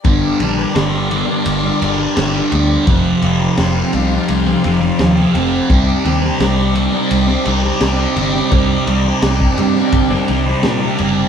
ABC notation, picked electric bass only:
X:1
M:4/4
L:1/8
Q:1/4=85
K:Cm
V:1 name="Picked electric bass" clef=bass
G,,, B,,, G,,,2 G,,, G,,, G,,, D,, | F,,, F,,, F,,, C,, C,, F,,, E,, F,,, | C,, E,, C,,2 C,, C,, C,, G,,, | C,, C,, C,, G,, G,,, C,, B,, ^F,,, |]